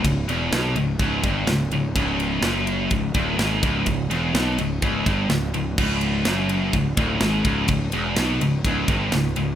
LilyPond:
<<
  \new Staff \with { instrumentName = "Distorted electric guitar" } { \clef bass \time 4/4 \key cis \minor \tempo 4 = 125 cis,8 e,8 b,8 cis,8 cis,8 g,8 cis,8 cis,8 | cis,4 fis,4 cis,8 d,8 gis,8 cis,8 | cis,8 e,8 b,8 cis,8 cis,8 g,8 cis,8 cis,8 | cis,4 fis,4 cis,8 d,8 gis,8 cis,8 |
cis,8 e,8 b,8 cis,8 cis,8 g,8 cis,8 cis,8 | }
  \new Staff \with { instrumentName = "Picked electric bass" } { \clef bass \time 4/4 \key cis \minor cis,,8 e,,8 b,,8 cis,,8 cis,,8 g,,8 cis,,8 cis,,8 | cis,,4 fis,,4 cis,,8 d,,8 gis,,8 cis,,8 | cis,,8 e,,8 b,,8 cis,,8 cis,,8 g,,8 cis,,8 cis,,8 | cis,,4 fis,,4 cis,,8 d,,8 gis,,8 cis,,8 |
cis,,8 e,,8 b,,8 cis,,8 cis,,8 g,,8 cis,,8 cis,,8 | }
  \new DrumStaff \with { instrumentName = "Drums" } \drummode { \time 4/4 <bd cymr>8 cymr8 <cymr sn>8 cymr8 <bd cymr>8 <bd cymr>8 <cymr sn>8 cymr8 | <bd cymr>8 cymr8 <cymr sn>8 cymr8 <bd cymr>8 <bd cymr>8 <cymr sn>8 <bd cymr>8 | <bd cymr>8 cymr8 <cymr sn>8 cymr8 <bd cymr>8 <bd cymr>8 <cymr sn>8 cymr8 | <cymc bd>8 cymr8 <cymr sn>8 cymr8 <bd cymr>8 <bd cymr>8 <cymr sn>8 <bd cymr>8 |
<bd cymr>8 cymr8 <cymr sn>8 cymr8 <bd cymr>8 <bd cymr>8 <cymr sn>8 cymr8 | }
>>